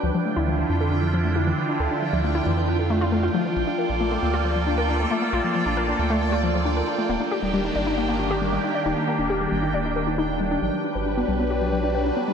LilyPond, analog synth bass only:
\new Staff \with { instrumentName = "Analog synth bass" } { \clef bass \time 4/4 \key d \major \tempo 4 = 136 d,16 r8 d,8. f,2 r8 | d,16 r8 d,8. f,2 r8 | bes,,16 r8 bes,,8. d,2 r8 | bes,,16 r8 bes,,8. d,2 r8 |
ees,,16 r8 ees,,8. g,,2 r8 | ees,,16 r8 ees,,8. g,,8 ees,,2 | g,,16 r8 g,,8. b,,2 r8 | }